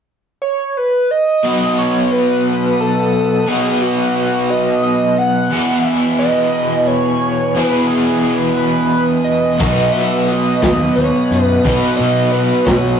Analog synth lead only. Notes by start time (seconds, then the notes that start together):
0.42 C#5
0.77 B4
1.11 D#5
1.79 C#5
2.11 B4
2.80 A4
3.48 G#4
3.82 F#4
4.15 F#4
4.50 D#5
4.83 D#5
5.18 F#5
5.84 E5
6.19 D#5
6.87 C#5
7.53 B4
7.87 G#4
8.22 G#4
8.57 B4
8.90 B4
9.24 D#5
9.93 E5
10.28 D#5
10.62 D#5
10.96 C#5
11.45 B4
11.63 B4
11.96 D#5
12.31 B4
12.66 C#5